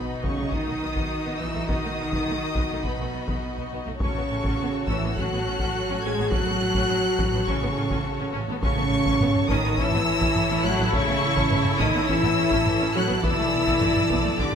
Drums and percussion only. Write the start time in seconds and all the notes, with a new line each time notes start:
0.24 taiko
0.52 taiko
0.96 taiko
1.69 taiko
2.12 taiko
2.55 taiko
2.84 taiko
3.28 taiko
4.00 taiko
4.44 taiko
4.87 taiko
5.16 taiko
5.59 taiko
6.32 taiko
6.75 taiko
7.19 taiko
7.48 taiko
7.91 taiko
8.63 taiko
9.06 taiko
9.20 taiko low-mid
9.35 taiko low-mid
9.49 taiko
9.77 taiko
9.91 taiko low-mid
10.21 taiko
10.36 taiko low-mid
10.93 taiko
11.37 taiko
11.51 taiko low-mid
11.65 taiko low-mid
11.80 taiko
12.09 taiko
12.23 taiko low-mid
12.51 taiko
12.67 taiko low-mid
13.24 taiko
13.67 taiko
13.81 taiko low-mid
13.96 taiko low-mid
14.10 taiko
14.39 taiko